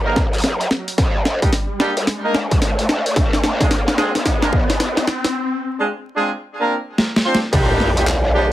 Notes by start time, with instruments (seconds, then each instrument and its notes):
Already playing: wobble bass C2, riser
0.06 horn section A#3 D4 D#4 A#4
0.16 kick, snare
0.33 closed hi-hat
0.35 closed hi-hat
0.38 closed hi-hat
0.40 closed hi-hat
0.42 wobble bass C2, snare, closed hi-hat
0.44 closed hi-hat
0.61 closed hi-hat
0.71 snare
0.88 closed hi-hat
0.98 wobble bass F2, kick, snare, closed hi-hat
1.25 snare
1.42 horn section G3 A#3 D4 D#4 G4, kick, closed hi-hat
1.53 snare, closed hi-hat
1.80 horn section G3 A#3 D4 D#4 G4, snare
1.97 wobble bass C2, closed hi-hat
2.07 snare, closed hi-hat
2.24 horn section A#3 D4 D#4 A#4
2.35 wobble bass A#1, snare
2.51 kick, closed hi-hat
2.62 snare, closed hi-hat
2.79 closed hi-hat
2.89 wobble bass A#1, snare
3.06 closed hi-hat
3.16 wobble bass A#1, kick, snare, closed hi-hat
3.33 snare
3.44 snare
3.61 horn section G#3 C4 D4 F4 G#4, kick, snare, closed hi-hat
3.71 wobble bass D2, snare, closed hi-hat
3.88 snare
3.98 horn section G#3 C4 D4 F4 G#4, snare
4.15 wobble bass G#1, snare, closed hi-hat
4.25 wobble bass A#1, kick, snare, closed hi-hat
4.42 horn section A#3 C4 D4 F4 A#4, snare
4.53 kick
4.70 snare, closed hi-hat
4.80 wobble bass A#1, snare, closed hi-hat
4.97 snare, closed hi-hat
5.07 snare
5.24 snare, closed hi-hat
5.79 horn section G#3 C4 D4 F4 G#4
6.16 horn section G#3 C4 D4 F4 G#4
6.61 horn section A#3 C4 D4 F4 A#4
6.98 snare
7.16 snare
7.25 horn section C4 D4 F4 C5
7.35 snare
7.53 wobble bass C2, horn section G3 A#3 D4 D#4 G4, kick, closed hi-hat, crash, sub drop
7.80 wobble bass A#1, snare
7.97 horn section G3 A#3 D4 D#4 G4, closed hi-hat
8.07 clap, closed hi-hat
8.35 horn section G3 A#3 D4 D#4 G4